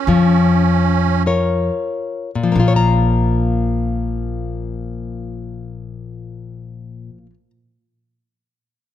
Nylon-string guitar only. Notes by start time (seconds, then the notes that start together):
0.08 F3
1.26 F4 A#4 C#5
2.35 A#2
2.43 F3
2.52 A#3
2.60 F4
2.68 C#5
2.76 A#5